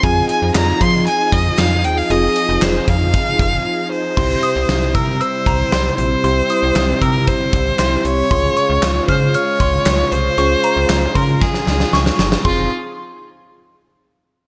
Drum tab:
CC |----------------|----------------|x---------------|----------------|
HH |x-x-x-x-x-x-x-x-|x-x-x-x-x-x-----|--x-x-x-x-x-x-x-|x-x-x-x-x-x-x-x-|
CP |----x-------x---|----x-----------|----------------|----x-------x---|
SD |----o-------o---|----o-----------|----o-------o---|----o-------o---|
BD |o-----o---o-----|------o-o-o-----|o-----o---o-----|------o-o-o-----|

CC |----------------|----------------|x---------------|
HH |x-x-x-x-x-x-x-x-|x-x-x-x---------|----------------|
CP |----x-------x---|----x-----------|----------------|
SD |----o-------o---|----o---oooooooo|----------------|
BD |o-----o---o-----|------o-o-------|o---------------|